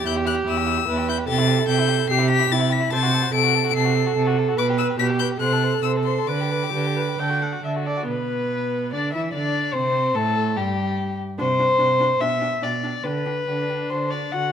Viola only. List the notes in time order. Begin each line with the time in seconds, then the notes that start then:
Already playing: G4
0.88 B4
1.29 A4
2.11 G4
2.52 E4
2.92 C5
3.34 A4
4.58 B4
5.00 G4
5.40 A4
6.28 B4
6.72 G4
6.97 B4
7.19 G5
7.42 F#5
7.64 E5
7.87 D5
8.08 B3
8.94 D4
9.15 E4
9.34 D4
9.75 C4
10.16 A3
10.57 G3
11.38 D4
11.59 D4
11.78 D4
12.00 D4
12.21 D4
12.40 D4
12.61 D4
12.83 D4
13.04 D4
13.25 D4
13.48 D4
14.33 F#4